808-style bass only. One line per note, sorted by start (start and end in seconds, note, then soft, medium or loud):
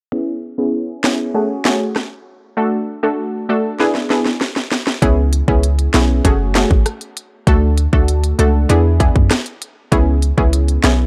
5.02 5.42 C#2 loud
5.48 5.88 C#2 loud
5.94 6.21 B1 loud
6.25 6.65 F#1 loud
6.71 6.84 G#1 medium
7.47 7.87 D2 loud
7.93 8.33 D2 medium
8.39 8.66 C#2 loud
8.70 9.10 E2 loud
9.16 9.29 F#2 medium
9.92 10.32 C#2 loud
10.38 10.78 C#2 loud
10.84 11.07 B1 loud